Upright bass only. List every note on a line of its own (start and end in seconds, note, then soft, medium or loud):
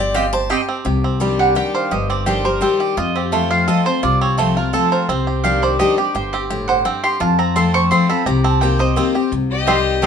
0.00 0.50 G1 medium
0.86 1.56 C2 medium
1.92 2.61 G1 medium
2.97 3.67 F2 loud
4.03 4.73 C2 medium
5.09 5.79 C2 medium
6.15 6.85 G1 medium
7.21 7.91 F2 medium
8.26 8.96 C2 medium
9.32 10.02 C2 medium